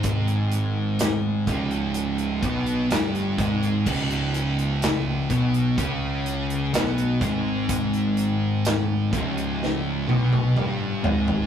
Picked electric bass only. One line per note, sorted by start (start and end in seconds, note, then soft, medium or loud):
0.00 1.43 G#1 medium
1.47 2.39 C#1 medium
2.42 2.87 B1 loud
2.91 3.35 G1 loud
3.38 3.83 G#1 medium
3.87 5.26 C#1 medium
5.30 5.74 B1 loud
5.78 6.69 C#2 medium
6.73 7.18 B1 loud
7.21 9.09 G#1 loud
9.13 10.04 C#1 medium
10.09 10.53 B1 loud
10.57 11.01 G1 medium
11.04 11.46 G#1 medium